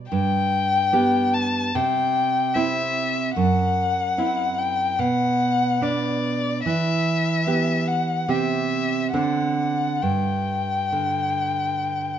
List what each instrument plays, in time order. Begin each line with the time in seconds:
Already playing: nylon-string guitar G3
0.11 nylon-string guitar G2, violin G5
0.93 nylon-string guitar B3 G4
1.33 violin A5
1.74 nylon-string guitar C3, violin G5
2.54 nylon-string guitar C4 E4, violin E5
3.35 nylon-string guitar F#2, violin F#5
4.18 nylon-string guitar C4 E4
4.58 violin G5
4.99 nylon-string guitar B2, violin F#5
5.81 nylon-string guitar B3 D4, violin D5
6.66 nylon-string guitar E3, violin E5
7.47 nylon-string guitar B3 G4
7.88 violin F#5
8.28 nylon-string guitar C3 C4 G4, violin E5
9.13 nylon-string guitar D3 C4 D4, violin F#5
10.01 nylon-string guitar G2, violin G5
10.92 nylon-string guitar D3